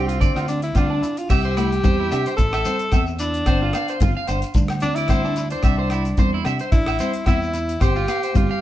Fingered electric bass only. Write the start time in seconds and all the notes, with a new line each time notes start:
Already playing: C2
0.22 D2
0.35 D2
0.75 D2
1.30 C2
1.85 E2
2.13 C3
2.38 A1
2.93 E2
3.47 G1
4.01 G1
4.28 G1
4.55 D2
5.63 C2
6.18 E2
6.45 C3
6.72 A1
7.27 E2
7.81 G1
8.36 G1